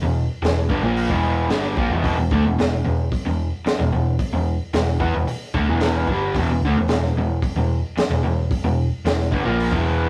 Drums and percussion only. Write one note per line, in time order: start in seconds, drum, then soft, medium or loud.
0.44 snare loud
0.44 open hi-hat medium
0.70 kick medium
0.97 open hi-hat medium
1.10 kick medium
1.49 snare loud
1.49 open hi-hat medium
1.77 kick medium
2.04 kick loud
2.04 open hi-hat medium
2.31 kick loud
2.59 snare loud
2.59 open hi-hat medium
3.12 kick loud
3.12 open hi-hat medium
3.66 snare loud
3.66 open hi-hat medium
4.19 kick loud
4.19 open hi-hat medium
4.73 snare loud
4.73 open hi-hat medium
5.00 kick medium
5.27 open hi-hat medium
5.54 kick loud
5.80 snare loud
5.80 open hi-hat medium
6.07 kick loud
6.35 kick loud
6.35 open hi-hat medium
6.88 snare loud
6.88 open hi-hat medium
7.03 snare soft
7.42 kick loud
7.42 open hi-hat medium
7.97 snare loud
7.97 open hi-hat medium
8.51 kick loud
8.51 open hi-hat medium
9.06 snare loud
9.06 open hi-hat medium
9.21 snare soft
9.32 kick medium
9.60 open hi-hat medium
9.72 kick loud